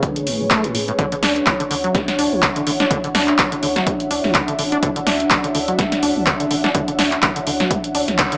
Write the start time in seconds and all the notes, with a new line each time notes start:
Already playing: A3 G#4 B4 C#5
0.03 D3, kick, closed hi-hat
0.16 closed hi-hat
0.27 A1 A2, open hi-hat
0.40 A2 A3
0.50 A3, kick, clap, closed hi-hat
0.64 A2, closed hi-hat
0.75 A2 B2, open hi-hat
0.88 A2, closed hi-hat
0.99 D3 D4 E5 F#5, kick, closed hi-hat
1.12 D3, closed hi-hat
1.23 D2 D4, snare, open hi-hat
1.36 closed hi-hat
1.46 D3, kick, clap, closed hi-hat
1.60 D3, closed hi-hat
1.71 D2 D3, open hi-hat
1.84 F#3, closed hi-hat
1.95 G#3, kick, snare, closed hi-hat
2.08 snare, closed hi-hat
2.19 D2 D4, open hi-hat
2.32 D2 E3
2.42 D3, kick, clap, closed hi-hat
2.56 D3, closed hi-hat
2.67 A1 D3, open hi-hat
2.80 D4, snare, closed hi-hat
2.91 D3, kick, closed hi-hat
3.04 D3, closed hi-hat
3.15 D2 D4, snare, open hi-hat
3.28 clap, closed hi-hat
3.38 D3, kick, clap, closed hi-hat
3.52 D3, closed hi-hat
3.63 D2 D3, open hi-hat
3.76 F#3, snare, closed hi-hat
3.87 G#3, kick, closed hi-hat
4.00 closed hi-hat
4.11 D2 D4, open hi-hat
4.24 D2 E3, snare
4.34 D3, kick, clap, closed hi-hat
4.48 D3, closed hi-hat
4.59 A1 D3, open hi-hat
4.72 D4, closed hi-hat
4.83 D3, kick, closed hi-hat
4.96 D3, closed hi-hat
5.07 D2 D4, snare, open hi-hat
5.20 closed hi-hat
5.30 D3, kick, clap, closed hi-hat
5.44 D3, closed hi-hat
5.55 D2 D3, open hi-hat
5.68 F#3, closed hi-hat
5.79 G#3, kick, snare, closed hi-hat
5.92 snare, closed hi-hat
6.03 D2 D4, open hi-hat
6.16 D2 E3
6.26 D3, kick, clap, closed hi-hat
6.40 D3, closed hi-hat
6.51 A1 D3, open hi-hat
6.64 D4, snare, closed hi-hat
6.75 D3, kick, closed hi-hat
6.88 D3, closed hi-hat
6.99 D2 D4, snare, open hi-hat
7.12 clap, closed hi-hat
7.22 D3, kick, clap, closed hi-hat
7.36 D3, closed hi-hat
7.47 D2 D3, open hi-hat
7.60 F#3, snare, closed hi-hat
7.71 G#3, kick, closed hi-hat
7.84 closed hi-hat
7.95 D2 D4, open hi-hat
8.08 D2 E3, snare, closed hi-hat
8.18 D3, kick, clap, closed hi-hat
8.32 D3, closed hi-hat